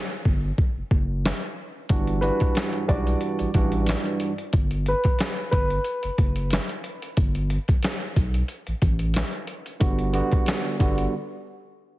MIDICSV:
0, 0, Header, 1, 5, 480
1, 0, Start_track
1, 0, Key_signature, 1, "major"
1, 0, Tempo, 659341
1, 1383, Time_signature, 4, 2, 24, 8
1, 8728, End_track
2, 0, Start_track
2, 0, Title_t, "Upright piano"
2, 0, Program_c, 0, 0
2, 1609, Note_on_c, 0, 71, 69
2, 2067, Note_off_c, 0, 71, 0
2, 2100, Note_on_c, 0, 74, 72
2, 3273, Note_off_c, 0, 74, 0
2, 3554, Note_on_c, 0, 71, 68
2, 4000, Note_off_c, 0, 71, 0
2, 4013, Note_on_c, 0, 71, 77
2, 4839, Note_off_c, 0, 71, 0
2, 8728, End_track
3, 0, Start_track
3, 0, Title_t, "Tine electric piano"
3, 0, Program_c, 1, 4
3, 1379, Note_on_c, 1, 43, 84
3, 1382, Note_on_c, 1, 52, 85
3, 1383, Note_on_c, 1, 55, 82
3, 1386, Note_on_c, 1, 62, 85
3, 1389, Note_on_c, 1, 66, 96
3, 1603, Note_off_c, 1, 43, 0
3, 1605, Note_off_c, 1, 52, 0
3, 1606, Note_off_c, 1, 55, 0
3, 1607, Note_off_c, 1, 62, 0
3, 1608, Note_off_c, 1, 66, 0
3, 1615, Note_on_c, 1, 43, 91
3, 1618, Note_on_c, 1, 52, 80
3, 1621, Note_on_c, 1, 55, 76
3, 1623, Note_on_c, 1, 62, 78
3, 1626, Note_on_c, 1, 66, 103
3, 2064, Note_off_c, 1, 43, 0
3, 2065, Note_off_c, 1, 52, 0
3, 2067, Note_off_c, 1, 55, 0
3, 2068, Note_off_c, 1, 62, 0
3, 2069, Note_off_c, 1, 66, 0
3, 2090, Note_on_c, 1, 43, 87
3, 2093, Note_on_c, 1, 52, 80
3, 2096, Note_on_c, 1, 55, 82
3, 2098, Note_on_c, 1, 62, 84
3, 2101, Note_on_c, 1, 66, 102
3, 2541, Note_off_c, 1, 43, 0
3, 2543, Note_off_c, 1, 52, 0
3, 2544, Note_off_c, 1, 55, 0
3, 2545, Note_off_c, 1, 62, 0
3, 2547, Note_off_c, 1, 66, 0
3, 2580, Note_on_c, 1, 43, 96
3, 2582, Note_on_c, 1, 52, 88
3, 2585, Note_on_c, 1, 55, 80
3, 2587, Note_on_c, 1, 62, 86
3, 2590, Note_on_c, 1, 66, 95
3, 3139, Note_off_c, 1, 43, 0
3, 3140, Note_off_c, 1, 52, 0
3, 3142, Note_off_c, 1, 55, 0
3, 3143, Note_off_c, 1, 62, 0
3, 3144, Note_off_c, 1, 66, 0
3, 7134, Note_on_c, 1, 50, 91
3, 7137, Note_on_c, 1, 55, 83
3, 7140, Note_on_c, 1, 59, 79
3, 7144, Note_on_c, 1, 66, 99
3, 7361, Note_off_c, 1, 50, 0
3, 7362, Note_off_c, 1, 55, 0
3, 7364, Note_off_c, 1, 59, 0
3, 7366, Note_off_c, 1, 66, 0
3, 7379, Note_on_c, 1, 50, 90
3, 7382, Note_on_c, 1, 55, 85
3, 7386, Note_on_c, 1, 59, 83
3, 7390, Note_on_c, 1, 66, 104
3, 7826, Note_off_c, 1, 50, 0
3, 7827, Note_off_c, 1, 55, 0
3, 7829, Note_off_c, 1, 59, 0
3, 7831, Note_off_c, 1, 66, 0
3, 7858, Note_on_c, 1, 50, 96
3, 7861, Note_on_c, 1, 55, 85
3, 7864, Note_on_c, 1, 59, 80
3, 7868, Note_on_c, 1, 66, 94
3, 8100, Note_off_c, 1, 50, 0
3, 8102, Note_off_c, 1, 55, 0
3, 8104, Note_off_c, 1, 59, 0
3, 8105, Note_off_c, 1, 66, 0
3, 8728, End_track
4, 0, Start_track
4, 0, Title_t, "Sub bass"
4, 0, Program_c, 2, 38
4, 186, Note_on_c, 2, 31, 92
4, 375, Note_off_c, 2, 31, 0
4, 556, Note_on_c, 2, 30, 50
4, 599, Note_off_c, 2, 30, 0
4, 664, Note_on_c, 2, 30, 93
4, 956, Note_off_c, 2, 30, 0
4, 1384, Note_on_c, 2, 31, 109
4, 1676, Note_off_c, 2, 31, 0
4, 2105, Note_on_c, 2, 35, 91
4, 2294, Note_off_c, 2, 35, 0
4, 2475, Note_on_c, 2, 33, 50
4, 2519, Note_off_c, 2, 33, 0
4, 2583, Note_on_c, 2, 33, 92
4, 2875, Note_off_c, 2, 33, 0
4, 3303, Note_on_c, 2, 31, 103
4, 3595, Note_off_c, 2, 31, 0
4, 4024, Note_on_c, 2, 31, 86
4, 4214, Note_off_c, 2, 31, 0
4, 4395, Note_on_c, 2, 30, 48
4, 4438, Note_off_c, 2, 30, 0
4, 4503, Note_on_c, 2, 30, 89
4, 4795, Note_off_c, 2, 30, 0
4, 5225, Note_on_c, 2, 31, 110
4, 5516, Note_off_c, 2, 31, 0
4, 5945, Note_on_c, 2, 35, 86
4, 6134, Note_off_c, 2, 35, 0
4, 6315, Note_on_c, 2, 33, 47
4, 6359, Note_off_c, 2, 33, 0
4, 6424, Note_on_c, 2, 33, 93
4, 6716, Note_off_c, 2, 33, 0
4, 7144, Note_on_c, 2, 31, 108
4, 7436, Note_off_c, 2, 31, 0
4, 7865, Note_on_c, 2, 31, 95
4, 8054, Note_off_c, 2, 31, 0
4, 8728, End_track
5, 0, Start_track
5, 0, Title_t, "Drums"
5, 185, Note_on_c, 9, 36, 91
5, 257, Note_off_c, 9, 36, 0
5, 424, Note_on_c, 9, 36, 87
5, 496, Note_off_c, 9, 36, 0
5, 663, Note_on_c, 9, 36, 95
5, 736, Note_off_c, 9, 36, 0
5, 914, Note_on_c, 9, 38, 107
5, 920, Note_on_c, 9, 39, 86
5, 987, Note_off_c, 9, 38, 0
5, 993, Note_off_c, 9, 39, 0
5, 1378, Note_on_c, 9, 42, 97
5, 1383, Note_on_c, 9, 36, 119
5, 1451, Note_off_c, 9, 42, 0
5, 1456, Note_off_c, 9, 36, 0
5, 1510, Note_on_c, 9, 42, 45
5, 1583, Note_off_c, 9, 42, 0
5, 1618, Note_on_c, 9, 42, 70
5, 1691, Note_off_c, 9, 42, 0
5, 1749, Note_on_c, 9, 42, 50
5, 1756, Note_on_c, 9, 36, 90
5, 1821, Note_off_c, 9, 42, 0
5, 1829, Note_off_c, 9, 36, 0
5, 1857, Note_on_c, 9, 42, 74
5, 1870, Note_on_c, 9, 38, 117
5, 1876, Note_on_c, 9, 39, 97
5, 1930, Note_off_c, 9, 42, 0
5, 1943, Note_off_c, 9, 38, 0
5, 1949, Note_off_c, 9, 39, 0
5, 1986, Note_on_c, 9, 42, 47
5, 2058, Note_off_c, 9, 42, 0
5, 2103, Note_on_c, 9, 36, 89
5, 2103, Note_on_c, 9, 42, 73
5, 2176, Note_off_c, 9, 36, 0
5, 2176, Note_off_c, 9, 42, 0
5, 2233, Note_on_c, 9, 42, 49
5, 2306, Note_off_c, 9, 42, 0
5, 2335, Note_on_c, 9, 42, 71
5, 2407, Note_off_c, 9, 42, 0
5, 2467, Note_on_c, 9, 42, 50
5, 2540, Note_off_c, 9, 42, 0
5, 2578, Note_on_c, 9, 42, 73
5, 2581, Note_on_c, 9, 36, 93
5, 2651, Note_off_c, 9, 42, 0
5, 2654, Note_off_c, 9, 36, 0
5, 2706, Note_on_c, 9, 42, 49
5, 2779, Note_off_c, 9, 42, 0
5, 2813, Note_on_c, 9, 42, 95
5, 2832, Note_on_c, 9, 38, 108
5, 2838, Note_on_c, 9, 39, 83
5, 2886, Note_off_c, 9, 42, 0
5, 2904, Note_off_c, 9, 38, 0
5, 2911, Note_off_c, 9, 39, 0
5, 2950, Note_on_c, 9, 42, 56
5, 3023, Note_off_c, 9, 42, 0
5, 3057, Note_on_c, 9, 42, 73
5, 3129, Note_off_c, 9, 42, 0
5, 3191, Note_on_c, 9, 42, 56
5, 3264, Note_off_c, 9, 42, 0
5, 3296, Note_on_c, 9, 42, 98
5, 3301, Note_on_c, 9, 36, 124
5, 3369, Note_off_c, 9, 42, 0
5, 3374, Note_off_c, 9, 36, 0
5, 3427, Note_on_c, 9, 42, 44
5, 3500, Note_off_c, 9, 42, 0
5, 3538, Note_on_c, 9, 42, 69
5, 3611, Note_off_c, 9, 42, 0
5, 3667, Note_on_c, 9, 42, 50
5, 3675, Note_on_c, 9, 36, 92
5, 3740, Note_off_c, 9, 42, 0
5, 3748, Note_off_c, 9, 36, 0
5, 3776, Note_on_c, 9, 42, 76
5, 3789, Note_on_c, 9, 38, 115
5, 3795, Note_on_c, 9, 39, 94
5, 3849, Note_off_c, 9, 42, 0
5, 3862, Note_off_c, 9, 38, 0
5, 3868, Note_off_c, 9, 39, 0
5, 3904, Note_on_c, 9, 42, 46
5, 3977, Note_off_c, 9, 42, 0
5, 4023, Note_on_c, 9, 36, 92
5, 4023, Note_on_c, 9, 42, 73
5, 4096, Note_off_c, 9, 36, 0
5, 4096, Note_off_c, 9, 42, 0
5, 4152, Note_on_c, 9, 42, 48
5, 4225, Note_off_c, 9, 42, 0
5, 4254, Note_on_c, 9, 42, 74
5, 4327, Note_off_c, 9, 42, 0
5, 4389, Note_on_c, 9, 42, 49
5, 4462, Note_off_c, 9, 42, 0
5, 4500, Note_on_c, 9, 42, 72
5, 4502, Note_on_c, 9, 36, 93
5, 4572, Note_off_c, 9, 42, 0
5, 4575, Note_off_c, 9, 36, 0
5, 4628, Note_on_c, 9, 42, 49
5, 4701, Note_off_c, 9, 42, 0
5, 4735, Note_on_c, 9, 42, 91
5, 4754, Note_on_c, 9, 38, 103
5, 4760, Note_on_c, 9, 39, 84
5, 4808, Note_off_c, 9, 42, 0
5, 4826, Note_off_c, 9, 38, 0
5, 4833, Note_off_c, 9, 39, 0
5, 4873, Note_on_c, 9, 42, 57
5, 4945, Note_off_c, 9, 42, 0
5, 4979, Note_on_c, 9, 42, 77
5, 5052, Note_off_c, 9, 42, 0
5, 5113, Note_on_c, 9, 42, 57
5, 5186, Note_off_c, 9, 42, 0
5, 5219, Note_on_c, 9, 42, 98
5, 5223, Note_on_c, 9, 36, 117
5, 5292, Note_off_c, 9, 42, 0
5, 5296, Note_off_c, 9, 36, 0
5, 5351, Note_on_c, 9, 42, 44
5, 5424, Note_off_c, 9, 42, 0
5, 5461, Note_on_c, 9, 42, 70
5, 5533, Note_off_c, 9, 42, 0
5, 5591, Note_on_c, 9, 42, 50
5, 5597, Note_on_c, 9, 36, 93
5, 5664, Note_off_c, 9, 42, 0
5, 5669, Note_off_c, 9, 36, 0
5, 5697, Note_on_c, 9, 42, 77
5, 5710, Note_on_c, 9, 38, 116
5, 5717, Note_on_c, 9, 39, 94
5, 5770, Note_off_c, 9, 42, 0
5, 5783, Note_off_c, 9, 38, 0
5, 5790, Note_off_c, 9, 39, 0
5, 5826, Note_on_c, 9, 42, 46
5, 5898, Note_off_c, 9, 42, 0
5, 5944, Note_on_c, 9, 36, 91
5, 5944, Note_on_c, 9, 42, 76
5, 6016, Note_off_c, 9, 36, 0
5, 6017, Note_off_c, 9, 42, 0
5, 6073, Note_on_c, 9, 42, 47
5, 6146, Note_off_c, 9, 42, 0
5, 6176, Note_on_c, 9, 42, 72
5, 6249, Note_off_c, 9, 42, 0
5, 6309, Note_on_c, 9, 42, 48
5, 6382, Note_off_c, 9, 42, 0
5, 6419, Note_on_c, 9, 42, 73
5, 6422, Note_on_c, 9, 36, 93
5, 6492, Note_off_c, 9, 42, 0
5, 6495, Note_off_c, 9, 36, 0
5, 6546, Note_on_c, 9, 42, 50
5, 6619, Note_off_c, 9, 42, 0
5, 6654, Note_on_c, 9, 42, 93
5, 6672, Note_on_c, 9, 38, 105
5, 6678, Note_on_c, 9, 39, 83
5, 6726, Note_off_c, 9, 42, 0
5, 6744, Note_off_c, 9, 38, 0
5, 6751, Note_off_c, 9, 39, 0
5, 6790, Note_on_c, 9, 42, 57
5, 6863, Note_off_c, 9, 42, 0
5, 6897, Note_on_c, 9, 42, 74
5, 6970, Note_off_c, 9, 42, 0
5, 7032, Note_on_c, 9, 42, 54
5, 7104, Note_off_c, 9, 42, 0
5, 7138, Note_on_c, 9, 42, 95
5, 7143, Note_on_c, 9, 36, 120
5, 7211, Note_off_c, 9, 42, 0
5, 7215, Note_off_c, 9, 36, 0
5, 7270, Note_on_c, 9, 42, 46
5, 7343, Note_off_c, 9, 42, 0
5, 7379, Note_on_c, 9, 42, 70
5, 7452, Note_off_c, 9, 42, 0
5, 7509, Note_on_c, 9, 42, 48
5, 7516, Note_on_c, 9, 36, 91
5, 7582, Note_off_c, 9, 42, 0
5, 7589, Note_off_c, 9, 36, 0
5, 7617, Note_on_c, 9, 42, 74
5, 7630, Note_on_c, 9, 38, 121
5, 7637, Note_on_c, 9, 39, 99
5, 7690, Note_off_c, 9, 42, 0
5, 7703, Note_off_c, 9, 38, 0
5, 7709, Note_off_c, 9, 39, 0
5, 7746, Note_on_c, 9, 42, 45
5, 7819, Note_off_c, 9, 42, 0
5, 7864, Note_on_c, 9, 36, 92
5, 7864, Note_on_c, 9, 42, 74
5, 7937, Note_off_c, 9, 36, 0
5, 7937, Note_off_c, 9, 42, 0
5, 7993, Note_on_c, 9, 42, 49
5, 8066, Note_off_c, 9, 42, 0
5, 8728, End_track
0, 0, End_of_file